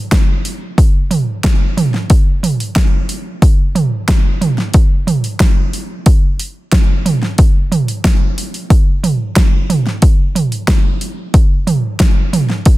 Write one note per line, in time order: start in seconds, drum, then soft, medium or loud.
0.12 kick loud
0.12 snare loud
0.12 open hi-hat medium
0.45 open hi-hat medium
0.78 kick loud
0.78 open hi-hat medium
1.11 floor tom medium
1.11 open hi-hat medium
1.44 kick loud
1.44 snare loud
1.44 open hi-hat medium
1.77 floor tom medium
1.77 open hi-hat medium
1.94 snare soft
2.10 kick loud
2.10 open hi-hat medium
2.43 floor tom medium
2.43 open hi-hat medium
2.60 open hi-hat soft
2.76 kick loud
2.76 snare loud
2.76 open hi-hat medium
3.09 open hi-hat medium
3.42 kick loud
3.42 open hi-hat medium
3.75 floor tom medium
3.75 open hi-hat medium
4.08 kick loud
4.08 snare loud
4.08 open hi-hat medium
4.41 floor tom medium
4.41 open hi-hat medium
4.58 snare soft
4.74 kick loud
4.74 open hi-hat medium
5.07 floor tom medium
5.07 open hi-hat medium
5.24 open hi-hat medium
5.40 kick loud
5.40 snare loud
5.40 open hi-hat medium
5.73 open hi-hat medium
6.06 kick loud
6.06 open hi-hat medium
6.39 open hi-hat medium
6.72 kick loud
6.72 snare loud
6.72 open hi-hat medium
7.06 floor tom medium
7.06 open hi-hat medium
7.22 snare soft
7.38 kick loud
7.38 open hi-hat medium
7.72 floor tom medium
7.72 open hi-hat medium
7.88 open hi-hat soft
8.04 kick loud
8.04 snare loud
8.04 open hi-hat medium
8.38 open hi-hat medium
8.54 open hi-hat soft
8.70 kick loud
8.70 open hi-hat medium
9.04 floor tom medium
9.04 open hi-hat medium
9.36 kick loud
9.36 snare loud
9.36 open hi-hat medium
9.70 floor tom medium
9.70 open hi-hat medium
9.86 snare soft
10.02 kick loud
10.02 open hi-hat medium
10.35 floor tom medium
10.35 open hi-hat medium
10.52 open hi-hat soft
10.68 kick loud
10.68 snare loud
10.68 open hi-hat medium
11.01 open hi-hat medium
11.34 kick loud
11.34 open hi-hat medium
11.67 floor tom medium
11.67 open hi-hat medium
11.99 kick loud
11.99 snare loud
11.99 open hi-hat medium
12.33 floor tom medium
12.33 open hi-hat medium
12.49 snare soft
12.65 kick loud
12.65 open hi-hat medium